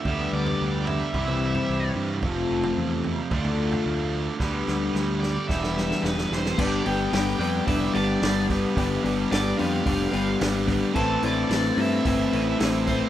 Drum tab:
CC |----------------|----------------|----------------|x---------------|
HH |----------------|----------------|----------------|--o-o-o-o-o-o-o-|
SD |----------------|----------------|o-o-o-o-oooooooo|----oo------o-o-|
T2 |---------o------|---------o------|----------------|----------------|
FT |o--o--o-o--o----|o--o--o-o--o----|----------------|----------------|
BD |o-------o-------|o-------o-------|o-------o-------|o-------o-----o-|

CC |----------------|x---------------|
HH |o-o-o-o-o-o-o-o-|--o-o-o-o-o-o-o-|
SD |----o-------o-o-|----oo------o---|
T2 |----------------|----------------|
FT |----------------|----------------|
BD |o-------o-----o-|o-------o-----o-|